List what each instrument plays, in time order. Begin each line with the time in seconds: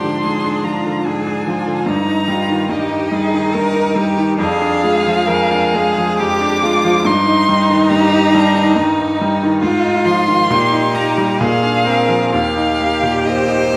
Already playing: grand piano G#2 F3 D4, violin D4 C6, cello G4
0.02 grand piano D3
0.23 grand piano G#2, cello G#4
0.44 grand piano D4
0.64 grand piano F3, cello F4, violin A#5
0.86 grand piano D3
1.05 grand piano G#2, violin D4 G#5, cello G#4
1.27 grand piano D4
1.48 grand piano F3, cello F4
1.67 grand piano D3
1.86 grand piano G2, cello D#4, violin D#4 A#5
2.07 grand piano D#4
2.28 grand piano G3, cello F4
2.49 grand piano D#3
2.69 grand piano G2, violin D#4 D#5, cello G4
2.91 grand piano D#4
3.12 grand piano G3, cello G#4
3.34 grand piano D#3
3.55 grand piano G2, cello A#4
3.76 grand piano D#4
3.96 grand piano G3, cello G4
4.17 grand piano D#3
4.39 grand piano F2, violin D4 F5, cello G#4
4.61 grand piano D4
4.83 grand piano G#3, violin F4
5.06 grand piano F3
5.27 grand piano F2, violin G#4, cello A#4
5.51 grand piano D4
5.74 grand piano G#3, cello G#4
5.98 grand piano F3
6.18 grand piano F2, violin G4 D6, cello G4
6.41 grand piano D4
6.62 grand piano G#3, violin F4, cello F4
6.84 grand piano F3
7.05 grand piano G2, violin D#4 C6, cello D#4
7.27 grand piano D#4
7.49 grand piano G3
7.70 grand piano D#3
7.89 grand piano G2, violin G4 A#5
8.12 grand piano D#4
8.33 grand piano G3, violin D4
8.55 grand piano D#3
8.76 grand piano G2, violin D#4
9.00 grand piano D#4
9.21 grand piano G3
9.43 grand piano D#3
9.61 grand piano G#2, cello F4, violin F4
9.84 grand piano D#4
10.05 grand piano F3, violin F4 C6
10.28 grand piano D#3
10.49 grand piano A#2, violin D#4, cello G4
10.73 grand piano D#4
10.95 grand piano A#3, violin A#5
11.18 grand piano G3
11.39 grand piano A#2, cello G#4, violin G#4 F5
11.63 grand piano D4
11.85 grand piano C4, cello A#4
12.09 grand piano F3
12.32 grand piano D#2, cello G4, violin G4 F5
12.57 grand piano D#4
12.81 grand piano A#3
13.03 grand piano A#2
13.25 grand piano D#2, violin C5 D#5
13.48 grand piano D#4
13.73 grand piano A#3